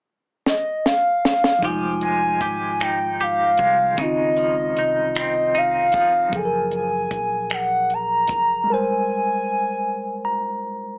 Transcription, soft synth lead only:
0, 0, Header, 1, 2, 480
1, 0, Start_track
1, 0, Tempo, 784314
1, 995, Time_signature, 6, 3, 24, 8
1, 6722, End_track
2, 0, Start_track
2, 0, Title_t, "Soft synth lead"
2, 0, Program_c, 0, 80
2, 298, Note_on_c, 0, 75, 84
2, 527, Note_on_c, 0, 77, 82
2, 536, Note_off_c, 0, 75, 0
2, 1012, Note_on_c, 0, 80, 98
2, 1022, Note_off_c, 0, 77, 0
2, 1244, Note_off_c, 0, 80, 0
2, 1253, Note_on_c, 0, 80, 92
2, 1732, Note_on_c, 0, 79, 86
2, 1741, Note_off_c, 0, 80, 0
2, 1973, Note_on_c, 0, 77, 92
2, 1982, Note_off_c, 0, 79, 0
2, 2454, Note_on_c, 0, 75, 102
2, 2463, Note_off_c, 0, 77, 0
2, 3165, Note_off_c, 0, 75, 0
2, 3176, Note_on_c, 0, 75, 83
2, 3412, Note_on_c, 0, 77, 92
2, 3422, Note_off_c, 0, 75, 0
2, 3892, Note_on_c, 0, 80, 104
2, 3901, Note_off_c, 0, 77, 0
2, 4124, Note_off_c, 0, 80, 0
2, 4137, Note_on_c, 0, 80, 101
2, 4612, Note_on_c, 0, 78, 100
2, 4622, Note_off_c, 0, 80, 0
2, 4858, Note_on_c, 0, 82, 110
2, 4867, Note_off_c, 0, 78, 0
2, 5336, Note_on_c, 0, 80, 114
2, 5345, Note_off_c, 0, 82, 0
2, 6526, Note_off_c, 0, 80, 0
2, 6722, End_track
0, 0, End_of_file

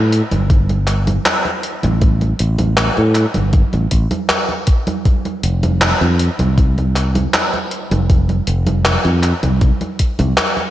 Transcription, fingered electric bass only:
0, 0, Header, 1, 2, 480
1, 0, Start_track
1, 0, Tempo, 759494
1, 1278, Time_signature, 4, 2, 24, 8
1, 6764, End_track
2, 0, Start_track
2, 0, Title_t, "Fingered electric bass"
2, 0, Program_c, 0, 33
2, 0, Note_on_c, 0, 45, 100
2, 129, Note_off_c, 0, 45, 0
2, 205, Note_on_c, 0, 31, 85
2, 745, Note_off_c, 0, 31, 0
2, 1165, Note_on_c, 0, 33, 100
2, 1465, Note_off_c, 0, 33, 0
2, 1518, Note_on_c, 0, 33, 99
2, 1824, Note_off_c, 0, 33, 0
2, 1884, Note_on_c, 0, 45, 96
2, 2050, Note_off_c, 0, 45, 0
2, 2124, Note_on_c, 0, 31, 88
2, 2290, Note_off_c, 0, 31, 0
2, 2362, Note_on_c, 0, 33, 88
2, 2444, Note_off_c, 0, 33, 0
2, 2474, Note_on_c, 0, 33, 82
2, 2563, Note_off_c, 0, 33, 0
2, 3435, Note_on_c, 0, 29, 100
2, 3742, Note_off_c, 0, 29, 0
2, 3799, Note_on_c, 0, 41, 100
2, 3968, Note_off_c, 0, 41, 0
2, 4042, Note_on_c, 0, 36, 89
2, 4584, Note_off_c, 0, 36, 0
2, 5002, Note_on_c, 0, 29, 103
2, 5304, Note_off_c, 0, 29, 0
2, 5356, Note_on_c, 0, 29, 104
2, 5663, Note_off_c, 0, 29, 0
2, 5720, Note_on_c, 0, 41, 98
2, 5888, Note_off_c, 0, 41, 0
2, 5960, Note_on_c, 0, 36, 87
2, 6128, Note_off_c, 0, 36, 0
2, 6444, Note_on_c, 0, 36, 104
2, 6525, Note_off_c, 0, 36, 0
2, 6764, End_track
0, 0, End_of_file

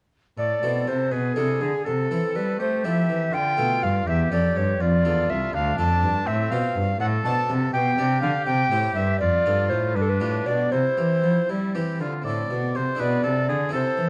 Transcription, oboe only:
0, 0, Header, 1, 2, 480
1, 0, Start_track
1, 0, Key_signature, 0, "minor"
1, 0, Tempo, 493827
1, 365, Time_signature, 6, 3, 24, 8
1, 3722, Tempo, 487805
1, 6126, Key_signature, 0, "major"
1, 9002, Tempo, 509338
1, 11882, Tempo, 491803
1, 13682, End_track
2, 0, Start_track
2, 0, Title_t, "Oboe"
2, 0, Program_c, 0, 68
2, 368, Note_on_c, 0, 69, 56
2, 1052, Note_off_c, 0, 69, 0
2, 1082, Note_on_c, 0, 68, 56
2, 1804, Note_on_c, 0, 69, 65
2, 1818, Note_off_c, 0, 68, 0
2, 2515, Note_off_c, 0, 69, 0
2, 2521, Note_on_c, 0, 67, 64
2, 3241, Note_on_c, 0, 65, 64
2, 3255, Note_off_c, 0, 67, 0
2, 3965, Note_on_c, 0, 67, 69
2, 3979, Note_off_c, 0, 65, 0
2, 4688, Note_on_c, 0, 65, 61
2, 4703, Note_off_c, 0, 67, 0
2, 5406, Note_on_c, 0, 62, 65
2, 5421, Note_off_c, 0, 65, 0
2, 6116, Note_on_c, 0, 60, 70
2, 6131, Note_off_c, 0, 62, 0
2, 6587, Note_off_c, 0, 60, 0
2, 6847, Note_on_c, 0, 69, 85
2, 7526, Note_off_c, 0, 69, 0
2, 7562, Note_on_c, 0, 67, 84
2, 8975, Note_off_c, 0, 67, 0
2, 9015, Note_on_c, 0, 65, 80
2, 9720, Note_on_c, 0, 62, 67
2, 9734, Note_off_c, 0, 65, 0
2, 10433, Note_off_c, 0, 62, 0
2, 10439, Note_on_c, 0, 64, 51
2, 11103, Note_off_c, 0, 64, 0
2, 11166, Note_on_c, 0, 64, 59
2, 11389, Note_off_c, 0, 64, 0
2, 11406, Note_on_c, 0, 67, 56
2, 11642, Note_off_c, 0, 67, 0
2, 11652, Note_on_c, 0, 65, 56
2, 11874, Note_off_c, 0, 65, 0
2, 11880, Note_on_c, 0, 74, 78
2, 12378, Note_on_c, 0, 72, 63
2, 12393, Note_off_c, 0, 74, 0
2, 12608, Note_on_c, 0, 71, 74
2, 12622, Note_off_c, 0, 72, 0
2, 12839, Note_off_c, 0, 71, 0
2, 12845, Note_on_c, 0, 69, 67
2, 13082, Note_off_c, 0, 69, 0
2, 13086, Note_on_c, 0, 68, 72
2, 13317, Note_off_c, 0, 68, 0
2, 13323, Note_on_c, 0, 69, 75
2, 13655, Note_off_c, 0, 69, 0
2, 13682, End_track
0, 0, End_of_file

